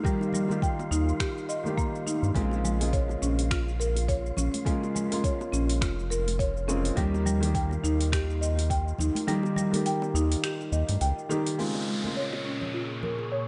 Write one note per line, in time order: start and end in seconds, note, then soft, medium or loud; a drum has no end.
0.00 0.03 D#3 medium
0.00 0.45 D#3 loud
0.00 0.04 G3 medium
0.00 0.46 G3 medium
0.00 0.04 A#3 medium
0.00 0.05 D#4 medium
0.00 11.60 F4 medium
0.00 0.05 G4 medium
0.00 11.60 F5 medium
0.04 0.33 G3 medium
0.04 0.46 A#3 medium
0.04 0.46 D#4 medium
0.04 0.46 G4 loud
0.04 kick loud
0.04 low conga medium
0.04 shaker soft
0.21 high bongo medium
0.21 shaker soft
0.33 0.49 G3 medium
0.33 low conga loud
0.33 shaker medium
0.48 1.61 D#3 medium
0.48 1.62 G3 medium
0.48 1.62 A#3 medium
0.48 1.63 D#4 medium
0.48 high conga medium
0.48 shaker soft
0.52 1.63 G4 medium
0.62 0.90 G5 loud
0.62 kick loud
0.62 shaker soft
0.79 high bongo medium
0.79 shaker soft
0.91 1.13 D#2 medium
0.91 1.19 D#4 medium
0.91 shaker medium
1.09 shaker soft
1.20 1.48 G4 medium
1.20 finger snap medium
1.20 kick medium
1.20 shaker soft
1.38 shaker soft
1.49 1.58 D#5 medium
1.49 shaker medium
1.64 2.32 D#3 medium
1.64 2.32 G3 medium
1.64 2.32 A#3 medium
1.64 2.33 D#4 medium
1.64 2.34 G4 medium
1.64 high conga medium
1.64 shaker soft
1.78 2.05 A#3 medium
1.78 kick loud
1.78 shaker soft
1.95 shaker soft
2.06 2.34 D#4 medium
2.06 high conga soft
2.06 shaker medium
2.23 2.32 G2 medium
2.23 shaker soft
2.34 3.16 A#1 medium
2.34 2.76 C#3 loud
2.34 2.76 G#3 medium
2.34 2.63 G#3 medium
2.34 2.77 A#3 medium
2.34 2.77 C4 medium
2.34 2.77 F4 loud
2.34 kick medium
2.34 open hi-hat soft
2.34 low conga medium
2.34 shaker soft
2.51 high bongo medium
2.51 shaker soft
2.64 2.80 G#3 medium
2.64 low conga medium
2.64 shaker medium
2.79 4.62 C#3 medium
2.79 4.63 G#3 medium
2.79 4.63 A#3 medium
2.79 4.64 F4 medium
2.79 open hi-hat medium
2.79 high conga medium
2.79 shaker soft
2.93 3.21 C#5 medium
2.93 kick loud
2.93 open hi-hat soft
2.93 shaker soft
3.09 high bongo medium
3.09 shaker soft
3.22 4.32 A#1 loud
3.22 3.50 C#4 medium
3.22 shaker medium
3.39 open hi-hat medium
3.39 shaker soft
3.51 3.79 F4 loud
3.51 finger snap medium
3.51 kick loud
3.51 open hi-hat soft
3.51 shaker soft
3.68 shaker soft
3.80 3.89 A#4 medium
3.80 shaker medium
3.96 open hi-hat medium
3.96 high bongo soft
3.96 shaker soft
4.08 4.24 C#5 medium
4.08 kick loud
4.08 open hi-hat soft
4.08 shaker soft
4.26 shaker soft
4.37 4.49 A#1 medium
4.37 4.65 C#4 medium
4.37 low conga loud
4.37 shaker medium
4.54 open hi-hat medium
4.54 high conga medium
4.54 shaker soft
4.65 5.07 C#3 loud
4.65 5.07 G#3 medium
4.65 4.94 G#3 medium
4.65 5.07 A#3 medium
4.65 5.08 F4 loud
4.65 kick medium
4.65 open hi-hat soft
4.65 low conga medium
4.65 shaker soft
4.83 high bongo medium
4.83 shaker soft
4.95 5.11 G#3 medium
4.95 low conga medium
4.95 shaker medium
5.09 6.64 C#3 medium
5.09 6.64 G#3 medium
5.09 6.65 A#3 medium
5.09 open hi-hat soft
5.09 high conga medium
5.09 shaker soft
5.13 6.66 F4 medium
5.24 5.52 C#5 medium
5.24 kick medium
5.24 open hi-hat soft
5.24 shaker soft
5.41 high bongo medium
5.41 shaker soft
5.52 5.83 A#1 loud
5.52 5.80 C#4 medium
5.52 shaker medium
5.69 open hi-hat medium
5.69 shaker soft
5.81 6.91 F1 medium
5.81 6.09 F4 loud
5.81 finger snap medium
5.81 kick medium
5.81 open hi-hat soft
5.81 shaker soft
5.99 shaker soft
6.10 6.20 A#4 medium
6.10 shaker medium
6.27 open hi-hat medium
6.27 high conga medium
6.27 shaker soft
6.39 6.55 C#5 loud
6.39 kick medium
6.39 open hi-hat soft
6.39 shaker soft
6.57 shaker soft
6.67 6.93 C#3 medium
6.67 6.94 G#3 medium
6.67 6.94 A#3 medium
6.67 6.94 C4 medium
6.67 6.96 C#4 medium
6.67 6.95 F4 loud
6.67 shaker medium
6.85 open hi-hat medium
6.85 shaker soft
6.96 7.78 D#2 loud
6.96 7.38 D#3 loud
6.96 7.38 G3 medium
6.96 7.25 G3 loud
6.96 7.38 A#3 medium
6.96 7.39 D#4 medium
6.96 7.39 G4 loud
6.96 kick medium
6.96 open hi-hat soft
6.96 low conga medium
6.96 shaker soft
7.14 high bongo medium
7.14 shaker soft
7.26 7.42 G3 medium
7.26 low conga medium
7.26 shaker medium
7.41 9.24 D#3 medium
7.41 9.24 G3 medium
7.41 9.25 A#3 medium
7.41 9.25 D#4 medium
7.41 9.26 G4 medium
7.41 open hi-hat medium
7.41 high conga medium
7.41 shaker soft
7.55 7.82 G5 medium
7.55 kick loud
7.55 open hi-hat soft
7.55 shaker soft
7.71 high bongo medium
7.71 shaker soft
7.84 8.93 D#2 loud
7.84 8.11 D#4 medium
7.84 shaker medium
8.01 open hi-hat medium
8.01 shaker soft
8.12 8.40 G4 medium
8.12 finger snap medium
8.12 kick medium
8.12 open hi-hat soft
8.12 shaker soft
8.30 shaker soft
8.41 8.51 D#5 medium
8.41 shaker medium
8.57 open hi-hat medium
8.57 high bongo soft
8.57 shaker soft
8.70 8.86 G5 loud
8.70 kick medium
8.70 open hi-hat soft
8.70 shaker soft
8.88 shaker soft
8.98 9.11 D#2 medium
8.98 9.27 D#4 medium
8.98 low conga medium
8.98 shaker medium
9.15 open hi-hat medium
9.15 high conga medium
9.15 shaker soft
9.27 9.69 D#3 loud
9.27 9.69 G3 medium
9.27 9.55 G3 loud
9.27 9.69 A#3 medium
9.27 9.70 D#4 medium
9.27 9.70 G4 loud
9.27 open hi-hat soft
9.27 low conga medium
9.27 shaker soft
9.43 high bongo medium
9.43 shaker soft
9.56 9.72 G3 medium
9.56 low conga medium
9.56 shaker medium
9.72 11.26 D#3 medium
9.72 11.27 G3 medium
9.72 11.27 A#3 medium
9.72 11.27 D#4 medium
9.72 11.28 G4 medium
9.72 open hi-hat medium
9.72 high conga medium
9.72 shaker soft
9.86 10.13 G5 loud
9.86 open hi-hat soft
9.86 shaker soft
10.02 high bongo medium
10.02 shaker soft
10.14 10.36 D#2 loud
10.14 10.42 D#4 medium
10.14 shaker medium
10.32 open hi-hat medium
10.32 shaker soft
10.44 10.71 G4 loud
10.44 finger snap medium
10.44 open hi-hat soft
10.44 shaker soft
10.61 shaker soft
10.72 10.84 D#2 loud
10.72 10.82 D#5 medium
10.72 shaker medium
10.89 10.98 G2 medium
10.89 open hi-hat medium
10.89 high conga medium
10.89 shaker soft
11.01 11.13 C#2 medium
11.01 11.17 G5 medium
11.01 open hi-hat soft
11.01 shaker soft
11.19 shaker soft
11.29 11.55 D#3 medium
11.29 11.56 G3 medium
11.29 11.56 A#3 medium
11.29 11.57 D#4 medium
11.29 11.56 D#4 medium
11.29 11.56 G4 loud
11.29 high conga soft
11.29 shaker medium
11.46 open hi-hat medium
11.46 shaker soft
11.57 13.48 A#2 medium
11.57 11.99 C#3 medium
11.57 12.00 G#3 medium
11.57 11.86 G#3 medium
11.57 12.00 A#3 medium
11.57 12.00 C4 medium
11.57 12.01 F4 loud
11.57 downlifter medium
11.75 high bongo medium
11.88 12.03 G#3 medium
11.88 13.48 G#4 medium
12.02 13.48 C#3 medium
12.02 13.48 G#3 medium
12.02 13.48 A#3 medium
12.02 high conga medium
12.06 13.48 F4 medium
12.06 13.48 C#6 medium
12.12 13.48 A#3 medium
12.17 12.44 C#5 medium
12.33 high bongo medium
12.45 12.73 C#4 medium
12.61 low conga medium
12.74 13.02 F4 medium
13.03 13.12 A#4 medium
13.03 low conga medium
13.19 high bongo soft
13.32 13.47 C#5 medium